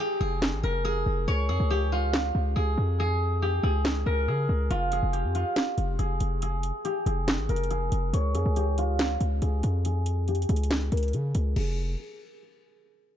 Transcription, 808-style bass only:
0.21 0.54 F1 loud
0.53 0.63 G#1 loud
0.64 1.05 F1 loud
1.06 1.27 F1 loud
1.28 1.51 C#2 loud
1.49 1.59 F2 loud
1.60 2.32 C#2 loud
2.35 2.55 C#2 loud
2.56 2.77 C#2 loud
2.78 3.60 F2 loud
3.63 4.05 C#2 loud
4.06 4.29 C#2 loud
4.28 4.48 C#3 loud
4.49 4.70 C#2 loud
4.71 5.01 F1 loud
5.03 5.26 F1 loud
5.24 5.45 F2 loud
5.78 5.98 F1 loud
5.99 6.20 F1 loud
6.21 6.72 F1 loud
7.06 7.40 F1 loud
7.38 7.49 G#1 loud
7.49 7.90 F1 loud
7.92 8.13 F1 loud
8.13 8.36 C#2 loud
8.35 8.45 F2 loud
8.46 9.18 C#2 loud
9.21 9.41 C#2 loud
9.42 9.63 C#2 loud
9.63 10.46 F2 loud
10.49 10.90 C#2 loud
10.92 11.15 C#2 loud
11.13 11.34 C#3 loud
11.35 11.55 C#2 loud
11.56 11.96 F1 loud

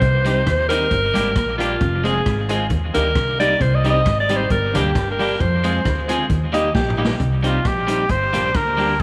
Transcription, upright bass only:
0.02 0.40 C2 loud
0.47 0.85 D#2 medium
0.92 1.12 G1 loud
1.16 1.34 G#1 medium
1.36 1.74 A#1 medium
1.81 2.19 F1 loud
2.26 2.72 G#1 loud
2.71 2.91 D#2 loud
2.96 3.13 D2 loud
3.16 3.54 C2 medium
3.61 3.99 C2 loud
4.06 4.44 G#1 loud
4.51 4.76 G1 loud
4.75 4.92 D2 loud
4.96 5.34 G1 loud
5.41 5.79 F2 loud
5.86 6.24 D2 loud
6.30 6.68 D#2 loud
6.75 7.13 A#1 loud
7.20 7.58 C2 loud
7.65 8.03 A#1 medium
8.10 8.30 G1 loud
8.34 8.52 A#1 medium
8.55 9.02 D2 loud

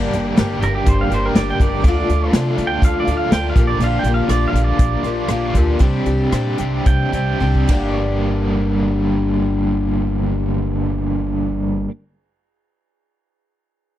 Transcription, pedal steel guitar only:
0.64 0.74 A#4 medium
0.75 0.86 G4 medium
0.88 0.99 C5 medium
1.01 1.12 F5 medium
1.14 1.24 C5 medium
1.26 1.36 A#4 medium
1.36 1.47 D5 medium
1.50 1.61 G5 medium
1.62 1.84 D5 medium
1.88 2.33 D5 medium
2.67 2.82 G5 loud
2.85 2.99 F5 medium
3.00 3.15 D5 medium
3.17 3.32 F5 medium
3.33 3.48 G5 medium
3.50 3.64 F5 medium
3.67 3.81 D5 medium
3.84 3.98 F5 medium
3.99 4.14 G5 medium
4.14 4.29 F5 medium
4.30 4.45 D5 medium
4.48 4.62 F5 medium
4.64 5.61 D5 medium
6.87 7.12 G5 medium
7.14 7.95 G5 medium

